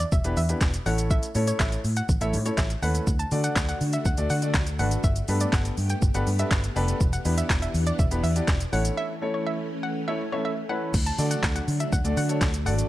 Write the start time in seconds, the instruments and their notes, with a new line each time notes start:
0.00 closed hi-hat, shaker
0.12 fingered electric bass E1, synth pluck E5, kick, shaker
0.24 fingered electric bass E1, grand piano B3 D4 E4 G4 B4, closed hi-hat, shaker
0.37 fingered electric bass E2, synth pluck E5, open hi-hat, shaker
0.49 grand piano B3 D4 E4 G4 B4, closed hi-hat, shaker
0.61 fingered electric bass E1, kick, snare, clap, shaker
0.74 closed hi-hat, shaker
0.86 fingered electric bass A1, grand piano A3 C#4 E4 A4 C#5, synth pluck F#5, open hi-hat, shaker
0.98 closed hi-hat, shaker
1.11 synth pluck E5, kick, shaker
1.23 closed hi-hat, shaker
1.35 fingered electric bass A2, grand piano A3 C#4 E4 A4 C#5, open hi-hat, shaker
1.47 synth pluck C#5, closed hi-hat, shaker
1.60 fingered electric bass A1, synth pluck E5, kick, snare, clap, shaker
1.72 closed hi-hat, shaker
1.84 fingered electric bass A2, open hi-hat, shaker
1.96 synth pluck F#5, closed hi-hat, shaker
2.09 fingered electric bass A1, kick, shaker
2.21 fingered electric bass A1, grand piano A3 C#4 E4 A4 C#5, synth pluck E5, closed hi-hat, shaker
2.33 fingered electric bass A2, open hi-hat, shaker
2.45 grand piano A3 C#4 E4 A4 C#5, synth pluck C#5, closed hi-hat, shaker
2.58 fingered electric bass A1, synth pluck E5, kick, snare, clap, shaker
2.70 closed hi-hat, shaker
2.82 fingered electric bass D#2, grand piano A3 C#4 E4 A4 B4, synth pluck F#5, open hi-hat, shaker
2.95 closed hi-hat, shaker
3.07 fingered electric bass D2, string machine A3 D4 F#4, kick, shaker
3.19 synth pluck A5, closed hi-hat, shaker
3.31 fingered electric bass D3, grand piano A3 D4 F#4 A4 D5, open hi-hat, shaker
3.44 synth pluck F#5, closed hi-hat, shaker
3.56 fingered electric bass D2, kick, snare, clap, shaker
3.69 synth pluck F#5, closed hi-hat, shaker
3.81 fingered electric bass D3, open hi-hat, shaker
3.93 synth pluck E5, closed hi-hat, shaker
4.05 fingered electric bass D2, synth pluck F#5, kick, shaker
4.18 fingered electric bass D2, grand piano A3 D4 F#4 A4 D5, closed hi-hat, shaker
4.30 fingered electric bass D3, synth pluck F#5, open hi-hat, shaker
4.42 grand piano A3 D4 F#4 A4 D5, closed hi-hat, shaker
4.54 fingered electric bass D2, kick, snare, clap, shaker
4.67 closed hi-hat, shaker
4.79 fingered electric bass G#1, grand piano A3 D4 F#4 A4 B4, synth pluck F#5, open hi-hat, shaker
4.91 closed hi-hat, shaker
5.04 fingered electric bass G1, string machine B3 G4, synth pluck E5, kick, shaker
5.16 closed hi-hat, shaker
5.28 fingered electric bass G2, grand piano B3 D4 G4 A4 B4, open hi-hat, shaker
5.41 synth pluck D5, closed hi-hat, shaker
5.53 fingered electric bass G1, synth pluck F#5, kick, snare, clap, shaker
5.65 closed hi-hat, shaker
5.77 fingered electric bass G2, open hi-hat, shaker
5.90 synth pluck G5, closed hi-hat, shaker
6.02 fingered electric bass G1, kick, shaker
6.14 fingered electric bass G1, grand piano B3 D4 G4 A4 B4, synth pluck F#5, closed hi-hat, shaker
6.27 fingered electric bass G2, open hi-hat, shaker
6.39 grand piano B3 D4 G4 A4 B4, synth pluck E5, closed hi-hat, shaker
6.51 fingered electric bass G1, kick, snare, clap, shaker
6.64 closed hi-hat, shaker
6.76 fingered electric bass F1, grand piano B3 D4 G4 A4 B4, open hi-hat, shaker
6.88 closed hi-hat, shaker
7.00 fingered electric bass E1, string machine E3 D4 F#5, kick, shaker
7.13 synth pluck F#5, closed hi-hat, shaker
7.25 fingered electric bass E2, grand piano B3 D4 E4 G4 B4, open hi-hat, shaker
7.38 synth pluck E5, closed hi-hat, shaker
7.50 fingered electric bass E1, kick, snare, clap, shaker
7.62 synth pluck E5, closed hi-hat, shaker
7.74 fingered electric bass E2, open hi-hat, shaker
7.87 synth pluck D5, closed hi-hat, shaker
7.99 fingered electric bass E1, synth pluck E5, kick, shaker
8.11 fingered electric bass E1, grand piano B3 D4 E4 G4 B4, closed hi-hat, shaker
8.23 fingered electric bass E2, synth pluck E5, open hi-hat, shaker
8.35 grand piano B3 D4 E4 G4 D5, closed hi-hat, shaker
8.48 fingered electric bass E1, kick, snare, clap, shaker
8.60 closed hi-hat, shaker
8.72 fingered electric bass A1, string machine E3 A3 C#4, grand piano A3 C#4 E4 A4 C#5, synth pluck F#5, open hi-hat, shaker
8.85 closed hi-hat, shaker
8.97 synth pluck E5
9.22 grand piano A3 C#4 E4 A4 C#5
9.34 synth pluck C#5
9.47 synth pluck E5
9.83 synth pluck F#5
10.08 grand piano A3 C#4 E4 A4 C#5, synth pluck E5
10.32 grand piano A3 C#4 E4 A4 E5, synth pluck C#5
10.45 synth pluck E5
10.69 grand piano A3 C#4 E4 A4 B4, synth pluck F#5
10.94 fingered electric bass D2, string machine F#3 A3 D4, kick, crash, shaker
11.06 synth pluck A5, closed hi-hat, shaker
11.18 fingered electric bass D3, grand piano A3 D4 F#4 A4 D5, open hi-hat, shaker
11.31 synth pluck F#5, closed hi-hat, shaker
11.43 fingered electric bass D2, kick, snare, clap, shaker
11.56 synth pluck F#5, closed hi-hat, shaker
11.68 fingered electric bass D3, open hi-hat, shaker
11.80 synth pluck E5, closed hi-hat, shaker
11.93 fingered electric bass D2, synth pluck F#5, kick, shaker
12.04 fingered electric bass D2, grand piano A3 D4 F#4 A4 D5, closed hi-hat, shaker
12.17 fingered electric bass D3, synth pluck F#5, open hi-hat, shaker
12.29 grand piano A3 D4 F#4 A4 C#5, closed hi-hat, shaker
12.41 fingered electric bass D2, kick, snare, clap, shaker
12.54 closed hi-hat, shaker
12.66 fingered electric bass G#1, grand piano A3 D4 F#4 A4 D5, synth pluck F#5, open hi-hat, shaker
12.79 closed hi-hat, shaker